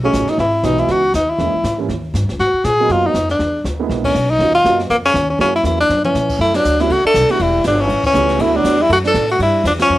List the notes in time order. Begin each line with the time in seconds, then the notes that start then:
Already playing: B1
0.03 F#3 A3 C#4 D#4 G#4
0.13 A1, snare, hi-hat pedal
0.27 D#4, muted upright bass stroke, snare
0.38 G#1 E4, brush sweep, snare
0.63 B1 E3 G#3 B3 D#4 F#4, snare, hi-hat pedal
0.78 E4, snare
0.88 C#2 F#4, brush sweep, snare
1.14 D#2 D#4, snare, hi-hat pedal
1.29 E4
1.38 E2 E3 G#3 A#3 C#4 E4, brush sweep, snare
1.54 muted upright bass stroke
1.64 G#2, snare, hi-hat pedal
1.78 E3 G3 A#3 C#4 E4
1.89 D#2, brush sweep, snare
2.14 G2, snare, hi-hat pedal
2.22 D#2
2.29 C#2, snare
2.39 G#2 F#4, brush sweep, snare
2.53 muted upright bass stroke
2.64 A#2 G#4, snare, hi-hat pedal
2.80 F#3 A#3 B3 C#4 D#4
2.89 F#2 F4, brush sweep, snare
3.06 D#4
3.14 F2, snare, hi-hat pedal
3.29 D4, snare
3.39 E2, brush sweep, snare
3.64 D2, snare, hi-hat pedal
3.79 G#3 A#3 B3 D4 E4
3.89 A#1, brush sweep, snare
4.04 C#4, kick, ride
4.15 B1, hi-hat pedal
4.30 D#4
4.39 D#2 F#3 A#3 C#4 D#4 F4, brush sweep, snare
4.55 F4
4.64 F#2 F#3 A#3 C#4 D#4 F#4, snare, hi-hat pedal
4.80 snare
4.90 F2 A#3, brush sweep, snare
5.06 C#4
5.14 D#2, snare, hi-hat pedal
5.30 C#4
5.39 F#2 F#3 A#3 C#4 E4 F#4, brush sweep, snare
5.56 E4
5.64 E2 F#3 A#3 C#4 E4 F#4, snare, hi-hat pedal
5.80 D4
5.89 F#2, snare
6.04 E3 C#4, mid tom
6.15 A#2, snare, hi-hat pedal
6.29 kick, crash
6.39 F#2 A3 E4
6.54 F#3 D4, snare, ride
6.65 D2, hi-hat pedal
6.79 G3 A3 B3 C#4 D4 E4 F#4, snare, ride
6.90 C#2 A3 F#4, ride
7.05 D4 A4, muted upright bass stroke
7.14 B1, snare, hi-hat pedal, ride
7.29 G3 A3 B3 D4 E4 F#4, ride
7.39 E1 G3 E4, ride
7.64 G1 G3 D4, snare, hi-hat pedal, ride
7.79 E3 C#4
7.89 A1, ride
8.04 E3 C#4, kick, crash
8.14 C#2 G3 A3 B3 C#4 E4, hi-hat pedal
8.29 snare, ride
8.39 D2 F#3 A3 B3 D4 E4, ride
8.55 F#3 D4
8.64 E2, snare, hi-hat pedal, ride
8.79 G3 E4
8.89 F#2 A3 F#4, ride
9.04 D4 A4, snare
9.14 A2, snare, hi-hat pedal, ride
9.29 A3 F#4, ride
9.39 G2 G3 E4, ride
9.64 E2 F3 D4, snare, hi-hat pedal, ride
9.79 F3 C#4, snare, ride
9.89 F2